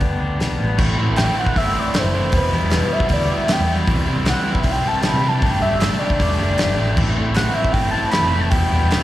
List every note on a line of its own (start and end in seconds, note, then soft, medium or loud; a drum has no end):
0.00 0.10 D2 loud
0.00 0.20 G2 medium
0.00 0.57 B3 medium
0.00 0.17 D4 medium
0.00 0.78 G4 medium
0.00 kick medium
0.00 open hi-hat soft
0.18 0.39 D2 medium
0.18 0.77 D4 medium
0.39 0.58 B1 medium
0.39 0.77 G3 medium
0.39 snare loud
0.39 open hi-hat soft
0.59 0.77 A1 medium
0.59 0.77 B3 medium
0.77 0.96 A1 loud
0.77 0.95 A2 medium
0.77 0.96 E3 loud
0.77 0.96 A3 loud
0.77 0.96 C4 loud
0.77 0.98 E4 loud
0.77 kick loud
0.77 crash loud
0.96 1.15 A2 medium
0.96 1.06 A2 medium
0.96 1.16 E3 medium
0.96 1.16 A3 medium
0.96 1.16 C4 loud
0.96 1.18 E4 medium
1.06 1.24 A1 medium
1.16 1.34 A2 medium
1.16 1.34 E3 medium
1.16 1.35 A3 medium
1.16 1.35 C4 loud
1.16 1.36 E4 loud
1.16 1.35 G5 loud
1.16 snare loud
1.16 clap medium
1.16 open hi-hat medium
1.35 1.51 A2 medium
1.35 1.53 E3 medium
1.35 1.53 A3 medium
1.35 1.53 C4 medium
1.35 1.54 E4 medium
1.39 1.59 F#5 loud
1.46 kick medium
1.53 1.72 A2 medium
1.53 1.73 E3 medium
1.53 1.72 A3 loud
1.53 1.73 C4 loud
1.53 1.74 E4 medium
1.53 kick loud
1.57 1.73 G1 loud
1.57 1.80 E5 loud
1.57 open hi-hat medium
1.73 1.91 A2 medium
1.73 1.93 E3 medium
1.73 1.92 A3 medium
1.73 1.93 C4 loud
1.73 1.94 E4 medium
1.79 2.00 D5 loud
1.93 2.11 A2 medium
1.93 2.13 E3 medium
1.93 2.12 A3 loud
1.93 2.12 C4 loud
1.93 2.13 E4 loud
1.93 snare loud
1.93 clap loud
1.93 open hi-hat medium
1.98 2.35 C5 loud
2.04 2.29 F#1 loud
2.12 2.31 A2 medium
2.12 2.33 E3 medium
2.12 2.32 A3 medium
2.12 2.32 C4 medium
2.12 2.34 E4 loud
2.32 2.49 E1 loud
2.32 2.50 E2 loud
2.32 2.51 B2 loud
2.32 2.51 E3 medium
2.32 2.52 G3 loud
2.32 2.53 B3 loud
2.32 2.53 E4 loud
2.32 kick loud
2.32 open hi-hat medium
2.37 2.53 B4 loud
2.51 2.69 E2 medium
2.51 2.61 E2 loud
2.51 2.69 B2 medium
2.51 2.70 E3 medium
2.51 2.71 G3 loud
2.51 2.71 B3 medium
2.51 2.72 E4 loud
2.51 2.94 B4 medium
2.63 2.79 E1 medium
2.70 2.87 E2 medium
2.70 2.88 B2 medium
2.70 2.89 E3 medium
2.70 2.89 G3 medium
2.70 2.90 B3 medium
2.70 2.91 E4 loud
2.70 snare loud
2.70 clap loud
2.70 open hi-hat medium
2.88 3.06 E2 medium
2.88 3.07 B2 medium
2.88 3.08 E3 loud
2.88 3.09 G3 loud
2.88 3.09 B3 medium
2.88 3.09 E4 loud
2.92 3.11 E5 loud
3.00 kick loud
3.07 3.27 D2 loud
3.07 3.26 E2 loud
3.07 3.26 B2 loud
3.07 3.28 E3 medium
3.07 3.29 G3 loud
3.07 3.28 B3 loud
3.07 3.29 E4 loud
3.07 kick loud
3.07 open hi-hat medium
3.13 3.35 D5 loud
3.27 3.45 E2 medium
3.27 3.46 B2 loud
3.27 3.46 E3 loud
3.27 3.47 G3 medium
3.27 3.47 B3 medium
3.27 3.47 E4 medium
3.33 3.53 E5 medium
3.46 3.66 E2 medium
3.46 3.66 B2 medium
3.46 3.66 E3 loud
3.46 3.68 G3 medium
3.46 3.68 B3 loud
3.46 3.68 E4 loud
3.46 snare loud
3.46 clap loud
3.46 open hi-hat medium
3.52 3.79 G5 loud
3.61 3.85 E2 loud
3.67 3.86 E2 medium
3.67 3.86 B2 medium
3.67 3.86 E3 medium
3.67 3.87 G3 medium
3.67 3.87 B3 medium
3.67 3.87 E4 loud
3.87 4.04 C2 loud
3.87 4.05 C3 medium
3.87 4.05 E3 loud
3.87 4.06 G3 loud
3.87 4.06 C4 loud
3.87 4.07 E4 loud
3.87 kick loud
3.87 open hi-hat medium
4.06 4.23 C3 medium
4.06 4.16 C3 loud
4.06 4.24 E3 medium
4.06 4.25 G3 loud
4.06 4.24 C4 medium
4.06 4.25 E4 medium
4.17 4.33 C2 medium
4.24 4.42 C3 medium
4.24 4.42 E3 loud
4.24 4.43 G3 medium
4.24 4.43 C4 medium
4.24 4.44 E4 loud
4.24 snare loud
4.24 clap loud
4.24 open hi-hat medium
4.29 4.54 F#5 loud
4.43 4.62 C3 medium
4.43 4.62 E3 medium
4.43 4.63 G3 medium
4.43 4.63 C4 medium
4.43 4.63 E4 loud
4.52 4.72 E5 loud
4.52 kick loud
4.63 4.82 B1 loud
4.63 4.81 C3 loud
4.63 4.81 E3 loud
4.63 4.82 G3 loud
4.63 4.82 C4 loud
4.63 4.83 E4 loud
4.63 kick loud
4.63 open hi-hat medium
4.71 4.87 G5 loud
4.82 4.99 C3 medium
4.82 5.00 E3 medium
4.82 5.01 G3 medium
4.82 5.00 C4 loud
4.82 5.01 E4 loud
4.88 5.08 A5 loud
5.01 5.19 C3 medium
5.01 5.20 E3 medium
5.01 5.21 G3 medium
5.01 5.20 C4 loud
5.01 5.21 E4 loud
5.01 snare loud
5.01 clap loud
5.01 open hi-hat medium
5.07 5.30 B5 loud
5.14 5.39 C3 loud
5.21 5.40 C3 medium
5.21 5.39 E3 medium
5.21 5.39 G3 medium
5.21 5.40 C4 medium
5.21 5.40 E4 medium
5.28 5.46 A5 loud
5.39 5.59 G1 loud
5.39 5.59 G3 medium
5.39 5.60 A3 loud
5.39 5.60 D4 loud
5.39 5.61 G4 loud
5.39 kick loud
5.39 open hi-hat medium
5.44 5.61 G5 loud
5.59 5.70 G2 loud
5.59 5.78 G3 medium
5.59 5.79 A3 medium
5.59 5.79 D4 medium
5.59 5.80 G4 loud
5.59 6.00 E5 medium
5.71 5.88 G1 medium
5.79 6.00 G3 medium
5.79 6.00 A3 medium
5.79 6.00 D4 medium
5.79 6.01 G4 medium
5.79 snare loud
5.79 clap loud
5.79 open hi-hat medium
5.99 6.18 G3 medium
5.99 6.18 A3 medium
5.99 6.18 D4 medium
5.99 6.20 G4 loud
5.99 6.77 D5 medium
6.10 kick medium
6.18 6.37 E1 loud
6.18 6.38 G3 loud
6.18 6.38 A3 loud
6.18 6.39 D4 loud
6.18 6.40 G4 loud
6.18 kick loud
6.18 open hi-hat medium
6.38 6.57 F#1 medium
6.38 6.57 G3 medium
6.38 6.57 A3 loud
6.38 6.57 D4 medium
6.38 6.59 G4 loud
6.57 6.76 G1 medium
6.57 6.76 G3 medium
6.57 6.76 A3 medium
6.57 6.77 D4 loud
6.57 6.77 G4 loud
6.57 snare loud
6.57 clap loud
6.57 open hi-hat medium
6.77 6.96 A1 loud
6.77 6.95 G3 medium
6.77 6.96 A3 medium
6.77 6.96 D4 medium
6.77 6.97 G4 medium
6.96 7.14 A1 loud
6.96 7.14 A2 loud
6.96 7.16 E3 medium
6.96 7.15 A3 loud
6.96 7.16 C4 loud
6.96 7.17 E4 loud
6.96 kick loud
6.96 crash loud
7.15 7.33 A2 medium
7.15 7.25 A2 loud
7.15 7.34 E3 medium
7.15 7.33 A3 medium
7.15 7.34 C4 medium
7.15 7.36 E4 medium
7.26 7.43 A1 loud
7.34 7.51 A2 medium
7.34 7.52 E3 medium
7.34 7.52 A3 medium
7.34 7.52 C4 medium
7.34 7.54 E4 medium
7.34 7.55 F#5 loud
7.34 snare loud
7.34 clap loud
7.34 open hi-hat medium
7.53 7.70 A2 loud
7.53 7.73 E3 medium
7.53 7.72 A3 loud
7.53 7.72 C4 loud
7.53 7.74 E4 medium
7.53 7.74 E5 medium
7.64 kick medium
7.72 7.91 G1 loud
7.72 7.91 A2 loud
7.72 7.92 E3 medium
7.72 7.92 A3 loud
7.72 7.92 C4 loud
7.72 7.93 E4 loud
7.72 7.90 G5 loud
7.72 kick loud
7.72 open hi-hat medium
7.91 8.11 A2 medium
7.91 8.12 E3 loud
7.91 8.11 A3 loud
7.91 8.12 C4 medium
7.91 8.13 E4 loud
7.91 8.10 A5 loud
8.11 8.30 A2 medium
8.11 8.31 E3 medium
8.11 8.31 A3 medium
8.11 8.31 C4 loud
8.11 8.33 E4 medium
8.11 8.42 B5 loud
8.11 snare loud
8.11 clap loud
8.11 open hi-hat medium
8.23 8.48 F1 loud
8.31 8.50 A2 medium
8.31 8.51 E3 medium
8.31 8.51 A3 medium
8.31 8.51 C4 medium
8.31 8.53 E4 loud
8.41 8.51 A5 loud
8.49 8.68 E1 loud
8.49 8.69 E2 loud
8.49 8.70 B2 loud
8.49 8.71 E3 loud
8.49 8.72 G3 loud
8.49 8.72 B3 loud
8.49 8.73 E4 loud
8.49 9.03 G5 loud
8.49 kick loud
8.49 open hi-hat medium
8.71 8.90 E2 medium
8.71 8.80 E2 medium
8.71 8.90 B2 medium
8.71 8.91 E3 medium
8.71 8.92 G3 medium
8.71 8.91 B3 medium
8.71 8.93 E4 medium
8.81 8.98 E1 medium
8.91 9.03 E2 medium
8.91 9.03 B2 medium
8.91 9.03 E3 loud
8.91 9.03 G3 loud
8.91 9.03 B3 loud
8.91 9.03 E4 loud
8.91 snare loud
8.91 clap loud
8.91 open hi-hat medium